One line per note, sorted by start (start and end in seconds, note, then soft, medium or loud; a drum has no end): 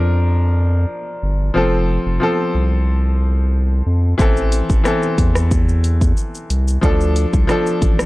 0.00 0.86 F2 medium
0.00 1.54 F3 medium
0.00 1.58 D4 medium
0.00 1.58 A#4 medium
1.23 1.51 G1 medium
1.54 1.99 F1 loud
1.54 2.06 F3 medium
1.54 2.07 C4 medium
1.54 2.07 A4 medium
2.06 2.19 F1 medium
2.20 3.21 F3 medium
2.20 3.22 C4 medium
2.20 3.23 A4 medium
2.54 3.82 C2 medium
3.86 4.14 F2 loud
4.18 4.62 A1 loud
4.18 4.70 E3 medium
4.18 4.70 C4 medium
4.18 4.71 A4 medium
4.18 kick loud
4.18 shaker medium
4.37 shaker medium
4.52 closed hi-hat medium
4.52 shaker medium
4.70 4.83 A1 medium
4.70 kick medium
4.70 shaker medium
4.84 5.85 E3 medium
4.84 5.86 C4 medium
4.84 5.86 A4 medium
4.84 cross-stick medium
4.84 shaker medium
5.03 shaker medium
5.18 6.13 E2 loud
5.18 kick medium
5.18 closed hi-hat medium
5.18 shaker medium
5.35 cross-stick medium
5.35 shaker medium
5.51 kick loud
5.51 shaker medium
5.69 shaker medium
5.84 closed hi-hat medium
5.84 shaker medium
6.01 kick medium
6.01 shaker medium
6.17 shaker medium
6.35 shaker medium
6.50 6.78 C2 loud
6.50 closed hi-hat medium
6.50 shaker medium
6.68 shaker medium
6.81 7.26 D2 loud
6.81 7.33 F3 medium
6.81 7.34 D4 medium
6.81 7.35 A4 medium
6.81 kick loud
6.81 shaker medium
7.01 shaker medium
7.16 closed hi-hat medium
7.16 shaker medium
7.33 7.47 C2 medium
7.33 kick medium
7.33 shaker medium
7.47 8.06 F3 medium
7.47 8.06 D4 medium
7.47 8.06 A4 medium
7.47 cross-stick medium
7.47 shaker medium
7.66 shaker soft
7.82 8.06 A1 medium
7.82 kick medium
7.82 closed hi-hat medium
7.82 shaker medium
7.99 cross-stick medium
7.99 shaker medium